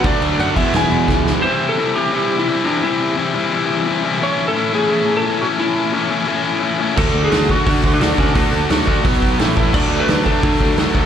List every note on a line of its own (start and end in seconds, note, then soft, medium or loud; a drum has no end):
0.03 0.16 D2 medium
0.03 0.54 D3 medium
0.03 0.55 F#3 medium
0.03 0.56 A3 medium
0.03 0.57 D4 loud
0.03 0.37 D5 medium
0.03 kick loud
0.03 crash medium
0.21 0.34 D2 medium
0.21 crash medium
0.39 0.51 F#2 medium
0.39 0.56 F#5 medium
0.39 crash medium
0.55 0.68 E1 medium
0.55 1.41 E2 medium
0.55 1.42 B2 loud
0.55 1.41 E3 loud
0.55 1.42 G#3 medium
0.55 1.43 B3 loud
0.55 1.43 E4 loud
0.55 0.73 E5 medium
0.55 kick medium
0.55 crash medium
0.73 0.85 E1 loud
0.73 1.24 G#5 medium
0.73 snare loud
0.73 crash medium
0.90 1.02 E1 medium
0.90 crash medium
1.08 1.32 C#2 medium
1.08 kick medium
1.08 snare medium
1.27 snare medium
1.42 1.77 C3 medium
1.42 1.78 E3 medium
1.42 1.79 G3 loud
1.42 1.79 C4 loud
1.42 1.79 E4 loud
1.42 1.68 C5 loud
1.69 1.96 A4 loud
1.78 1.95 C3 medium
1.78 1.95 E3 loud
1.78 1.96 G3 loud
1.78 1.96 C4 medium
1.78 1.97 E4 loud
1.95 2.11 C3 medium
1.95 2.13 E3 loud
1.95 2.13 G3 medium
1.95 2.13 C4 loud
1.95 2.14 E4 loud
1.95 2.36 G4 loud
2.13 2.46 C3 medium
2.13 2.47 E3 loud
2.13 2.47 G3 loud
2.13 2.48 C4 loud
2.13 2.49 E4 loud
2.39 2.66 E4 medium
2.47 2.63 C3 medium
2.47 2.65 E3 medium
2.47 2.64 G3 loud
2.47 2.64 C4 loud
2.47 2.66 E4 loud
2.64 2.81 C3 medium
2.64 2.83 E3 medium
2.64 2.82 G3 loud
2.64 2.82 C4 medium
2.64 2.83 D4 medium
2.64 2.84 E4 medium
2.82 3.15 C3 loud
2.82 3.17 E3 loud
2.82 3.16 G3 loud
2.82 3.17 C4 loud
2.82 3.15 E4 medium
2.82 3.18 E4 loud
3.16 3.32 C3 loud
3.16 3.34 E3 loud
3.16 3.33 G3 loud
3.16 3.34 C4 loud
3.16 3.35 E4 loud
3.33 3.50 C3 medium
3.33 3.52 E3 medium
3.33 3.51 G3 medium
3.33 3.52 C4 loud
3.33 3.53 E4 loud
3.51 3.85 C3 loud
3.51 3.86 E3 loud
3.51 3.86 G3 loud
3.51 3.87 C4 loud
3.51 3.88 E4 loud
3.86 4.02 C3 medium
3.86 4.04 E3 loud
3.86 4.03 G3 medium
3.86 4.04 C4 loud
3.86 4.05 E4 loud
4.03 4.20 C3 loud
4.03 4.20 E3 medium
4.03 4.20 G3 loud
4.03 4.20 C4 loud
4.03 4.22 E4 loud
4.20 4.54 A2 loud
4.20 4.55 E3 loud
4.20 4.55 A3 loud
4.20 4.56 C#4 loud
4.20 4.56 E4 loud
4.20 4.46 C#5 loud
4.48 4.71 A4 loud
4.54 4.71 A2 loud
4.54 4.72 E3 medium
4.54 4.73 A3 loud
4.54 4.74 C#4 loud
4.54 4.74 E4 loud
4.72 4.87 A2 medium
4.72 4.88 E3 loud
4.72 4.89 A3 loud
4.72 4.89 C#4 loud
4.72 4.89 E4 loud
4.72 5.14 G#4 medium
4.88 5.22 A2 loud
4.88 5.23 E3 loud
4.88 5.25 A3 loud
4.88 5.25 C#4 loud
4.88 5.25 E4 loud
5.17 5.43 A4 medium
5.24 5.39 A2 loud
5.24 5.40 E3 loud
5.24 5.41 A3 medium
5.24 5.41 C#4 loud
5.24 5.41 E4 loud
5.40 5.56 A2 medium
5.40 5.57 E3 loud
5.40 5.59 A3 loud
5.40 5.58 C#4 loud
5.40 5.59 E4 loud
5.40 5.46 F#4 medium
5.57 5.91 A2 loud
5.57 5.92 E3 loud
5.57 5.93 A3 loud
5.57 5.93 C#4 loud
5.57 5.94 E4 medium
5.57 5.93 E4 loud
5.92 6.08 A2 loud
5.92 6.09 E3 medium
5.92 6.10 A3 medium
5.92 6.11 C#4 loud
5.92 6.11 E4 loud
6.09 6.25 A2 medium
6.09 6.26 E3 medium
6.09 6.28 A3 medium
6.09 6.27 C#4 medium
6.09 6.28 E4 loud
6.26 6.60 A2 loud
6.26 6.61 E3 loud
6.26 6.62 A3 loud
6.26 6.62 C#4 loud
6.26 6.62 E4 loud
6.61 6.77 A2 medium
6.61 6.78 E3 medium
6.61 6.80 A3 loud
6.61 6.79 C#4 medium
6.61 6.79 E4 loud
6.79 6.96 A2 loud
6.79 6.95 E3 loud
6.79 6.95 A3 loud
6.79 6.97 C#4 loud
6.79 6.97 E4 loud
6.95 7.11 D2 medium
6.95 7.29 D3 loud
6.95 7.30 A3 medium
6.95 7.31 D4 loud
6.95 7.31 F#4 loud
6.95 7.22 A4 loud
6.95 kick loud
6.95 crash loud
7.15 7.28 D2 loud
7.25 7.51 G#4 loud
7.31 7.58 D2 loud
7.31 7.46 D3 medium
7.31 7.47 A3 loud
7.31 7.47 D4 loud
7.31 7.48 F#4 loud
7.31 snare loud
7.31 open hi-hat medium
7.47 7.64 D3 medium
7.47 7.65 A3 medium
7.47 7.65 D4 medium
7.47 7.66 F#4 loud
7.47 7.94 F#4 loud
7.47 kick medium
7.65 7.99 D3 loud
7.65 7.80 D3 loud
7.65 8.00 A3 loud
7.65 8.00 D4 loud
7.65 8.01 F#4 loud
7.65 kick loud
7.65 open hi-hat medium
7.84 7.97 D2 loud
7.84 kick medium
7.94 8.20 D4 medium
8.00 8.13 D2 loud
8.00 8.16 D3 loud
8.00 8.17 A3 loud
8.00 8.17 D4 loud
8.00 8.18 F#4 loud
8.00 snare loud
8.00 open hi-hat medium
8.17 8.31 D2 medium
8.17 8.33 D3 medium
8.17 8.34 A3 loud
8.17 8.36 C#4 medium
8.17 8.34 D4 loud
8.17 8.35 F#4 loud
8.17 kick loud
8.34 8.48 D2 loud
8.34 8.69 D3 loud
8.34 8.69 A3 loud
8.34 8.70 D4 loud
8.34 8.68 D4 medium
8.34 8.70 F#4 loud
8.34 kick loud
8.34 open hi-hat medium
8.52 8.65 D2 loud
8.70 8.96 D2 loud
8.70 8.85 D3 medium
8.70 8.86 A3 loud
8.70 8.87 D4 loud
8.70 8.87 F#4 loud
8.70 snare loud
8.70 open hi-hat medium
8.86 9.03 D3 medium
8.86 9.04 A3 loud
8.86 9.04 D4 loud
8.86 9.04 F#4 loud
8.86 kick medium
9.04 9.18 B1 loud
9.04 9.38 B2 loud
9.04 9.38 F#3 loud
9.04 9.39 B3 loud
9.04 9.39 F#4 loud
9.04 kick loud
9.04 open hi-hat medium
9.22 9.35 B1 medium
9.22 kick medium
9.39 9.52 A1 medium
9.39 9.55 A2 loud
9.39 9.56 E3 loud
9.39 9.57 A3 loud
9.39 9.57 E4 loud
9.39 snare loud
9.39 open hi-hat medium
9.56 9.70 A1 medium
9.56 9.73 A2 loud
9.56 9.73 E3 loud
9.56 9.74 A3 loud
9.56 9.74 E4 loud
9.56 kick medium
9.73 9.87 D2 loud
9.73 10.07 D3 medium
9.73 10.08 F#3 loud
9.73 10.09 A3 loud
9.73 10.09 D4 loud
9.73 10.01 D5 loud
9.73 kick loud
9.73 crash loud
9.90 10.03 D2 medium
10.00 10.26 B4 loud
10.08 10.34 D2 loud
10.08 10.24 D3 loud
10.08 10.25 F#3 loud
10.08 10.26 A3 loud
10.08 10.26 D4 loud
10.08 snare loud
10.08 open hi-hat medium
10.25 10.41 D3 medium
10.25 10.42 F#3 loud
10.25 10.42 A3 loud
10.25 10.43 D4 loud
10.25 11.06 A4 medium
10.25 kick medium
10.42 10.76 D3 medium
10.42 10.56 D3 medium
10.42 10.76 F#3 loud
10.42 10.77 A3 loud
10.42 10.77 D4 loud
10.42 kick loud
10.42 open hi-hat medium
10.60 10.73 D2 medium
10.60 kick medium
10.77 10.90 D2 medium
10.77 10.92 D3 medium
10.77 10.93 F#3 loud
10.77 10.94 A3 loud
10.77 10.94 D4 loud
10.77 snare loud
10.77 open hi-hat medium
10.94 11.06 D2 medium
10.94 11.06 D3 medium
10.94 11.06 F#3 loud
10.94 11.06 A3 loud
10.94 11.06 D4 medium
10.94 kick loud